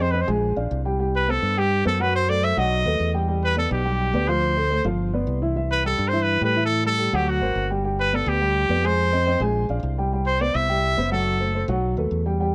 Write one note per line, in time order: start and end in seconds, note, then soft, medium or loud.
0.00 0.22 F2 medium
0.00 0.11 C4 medium
0.00 0.11 C5 medium
0.00 0.13 C5 medium
0.00 0.11 D#5 medium
0.11 0.25 C4 medium
0.11 0.23 B4 medium
0.11 0.25 C5 medium
0.11 0.25 D#5 medium
0.21 0.29 C5 medium
0.27 0.55 A#1 medium
0.27 0.51 G#3 medium
0.27 0.51 G#4 medium
0.27 0.51 G#5 medium
0.56 0.70 A#1 medium
0.56 0.80 D4 medium
0.56 0.80 D5 medium
0.56 0.80 F5 medium
0.71 1.37 C2 medium
0.85 0.97 G3 medium
0.85 0.97 G4 medium
0.85 0.97 G5 medium
0.99 1.23 G3 medium
0.99 1.23 G4 medium
0.99 1.23 G5 medium
1.16 1.32 B4 medium
1.28 1.52 B3 medium
1.28 1.60 A4 medium
1.28 1.52 B4 medium
1.28 1.52 C5 medium
1.42 1.82 G2 medium
1.57 1.80 G3 medium
1.57 1.80 G4 medium
1.57 1.86 G4 medium
1.57 1.81 G5 medium
1.85 2.51 F#2 medium
1.85 1.97 B3 medium
1.85 2.03 A4 medium
1.85 1.97 B4 medium
1.85 1.97 C5 medium
1.99 2.23 F#3 medium
1.99 2.23 F#4 medium
1.99 2.15 B4 medium
1.99 2.23 F#5 medium
2.16 2.31 C5 medium
2.28 2.40 A3 medium
2.28 2.40 A4 medium
2.28 2.40 C5 medium
2.28 2.46 D5 loud
2.42 2.54 A3 medium
2.42 2.54 A4 medium
2.42 2.54 C5 medium
2.42 2.60 E5 loud
2.57 2.83 B1 medium
2.57 2.80 F#3 medium
2.57 2.80 F#4 medium
2.57 3.15 D#5 medium
2.57 2.81 F#5 medium
2.85 2.99 D#2 medium
2.85 3.09 A3 medium
2.85 3.09 A4 medium
2.85 3.09 B4 medium
3.00 3.66 E2 medium
3.14 3.26 G3 medium
3.14 3.26 G4 medium
3.14 3.26 G5 medium
3.28 3.52 G3 medium
3.28 3.52 G4 medium
3.28 3.52 G5 medium
3.44 3.57 B4 medium
3.56 3.80 B3 medium
3.56 3.71 A4 medium
3.56 3.80 B4 medium
3.56 3.80 D5 medium
3.71 4.11 B1 medium
3.71 4.30 G4 medium
3.85 4.08 G3 medium
3.85 4.08 G4 medium
3.85 4.09 G5 medium
4.13 4.79 D2 medium
4.13 4.25 B3 medium
4.13 4.26 B4 medium
4.13 4.26 D5 medium
4.28 4.52 F3 medium
4.28 4.52 F4 medium
4.28 4.85 C5 loud
4.28 4.52 F5 medium
4.57 4.68 A3 medium
4.57 4.69 A4 medium
4.57 4.69 C5 medium
4.70 4.82 A3 medium
4.70 4.82 A4 medium
4.70 4.83 C5 medium
4.84 5.24 G1 medium
4.84 5.08 F3 medium
4.84 5.08 F4 medium
4.84 5.09 F5 medium
5.14 5.37 B3 medium
5.14 5.37 B4 medium
5.14 5.37 D5 medium
5.27 5.93 C2 medium
5.42 5.54 E3 medium
5.42 5.54 E4 medium
5.42 5.54 E5 medium
5.56 5.79 E3 medium
5.56 5.80 E4 medium
5.56 5.80 E5 medium
5.72 5.84 B4 loud
5.84 6.08 G3 medium
5.84 6.08 G4 medium
5.84 6.08 A4 medium
5.84 6.10 A4 medium
5.98 6.38 G2 medium
6.08 6.24 C5 medium
6.13 6.36 E3 medium
6.13 6.36 E4 medium
6.13 6.37 E5 medium
6.23 6.43 B4 loud
6.41 7.07 A2 medium
6.41 6.53 G3 medium
6.41 6.54 G4 medium
6.41 6.54 A4 medium
6.41 6.63 B4 medium
6.56 6.79 E3 medium
6.56 6.80 E4 medium
6.56 6.80 E5 medium
6.66 6.84 A4 medium
6.84 6.96 G3 medium
6.84 6.96 G4 medium
6.84 6.96 A4 medium
6.84 7.17 A4 loud
6.99 7.10 G3 medium
6.99 7.10 G4 medium
6.99 7.10 A4 medium
7.13 7.39 D2 medium
7.13 7.36 F#3 medium
7.13 7.36 F#4 medium
7.13 7.31 G4 medium
7.13 7.37 F#5 medium
7.29 7.71 F#4 medium
7.41 7.55 G#1 medium
7.41 7.64 A#3 medium
7.41 7.65 A#4 medium
7.41 7.65 C5 medium
7.55 8.21 G1 medium
7.70 7.82 G3 medium
7.70 7.82 G4 medium
7.70 7.82 G5 medium
7.84 8.07 G3 medium
7.84 8.08 G4 medium
7.84 8.08 G5 medium
8.00 8.16 B4 medium
8.13 8.36 B3 medium
8.13 8.30 A4 medium
8.13 8.36 B4 medium
8.13 8.36 D5 medium
8.26 8.66 D2 medium
8.26 8.87 G4 medium
8.41 8.64 G3 medium
8.41 8.65 G4 medium
8.41 8.65 G5 medium
8.69 9.35 F2 medium
8.69 8.81 B3 medium
8.69 8.81 B4 medium
8.69 8.81 D5 medium
8.83 9.07 G#3 medium
8.83 9.07 G#4 medium
8.83 9.42 C5 loud
8.83 9.07 G#5 medium
9.12 9.24 C4 medium
9.12 9.24 C5 medium
9.12 9.24 D#5 medium
9.26 9.38 C4 medium
9.26 9.38 C5 medium
9.26 9.38 D#5 medium
9.40 9.67 A#1 medium
9.40 9.64 G#3 medium
9.40 9.64 G#4 medium
9.40 9.64 G#5 medium
9.69 9.82 A#1 medium
9.69 9.93 D4 medium
9.69 9.93 D5 medium
9.69 9.93 F5 medium
9.83 10.49 C2 medium
9.98 10.10 G3 medium
9.98 10.10 G4 medium
9.98 10.10 G5 medium
10.13 10.36 G3 medium
10.13 10.36 G4 medium
10.13 10.36 G5 medium
10.27 10.43 C5 medium
10.41 10.64 B3 medium
10.41 10.64 B4 medium
10.41 10.64 C5 medium
10.41 10.57 D5 medium
10.54 10.94 C2 medium
10.54 11.12 E5 loud
10.69 10.92 G3 medium
10.69 10.92 G4 medium
10.69 10.92 G5 medium
10.97 11.63 F#1 medium
10.97 11.09 B3 medium
10.97 11.09 B4 medium
10.97 11.09 C5 medium
11.11 11.35 F#3 medium
11.11 11.35 F#4 medium
11.11 11.65 A4 medium
11.11 11.35 F#5 medium
11.40 11.52 A3 medium
11.40 11.52 A4 medium
11.40 11.52 C5 medium
11.54 11.66 A3 medium
11.54 11.66 A4 medium
11.54 11.66 C5 medium
11.68 11.95 B1 medium
11.68 11.92 F#3 medium
11.68 11.92 F#4 medium
11.68 11.92 F#5 medium
11.97 12.10 D#2 medium
11.97 12.20 A3 medium
11.97 12.21 A4 medium
11.97 12.21 B4 medium
12.11 12.55 E2 medium
12.26 12.37 G3 medium
12.26 12.37 G4 medium
12.26 12.37 G5 medium
12.40 12.55 G3 medium
12.40 12.55 G4 medium
12.40 12.55 G5 medium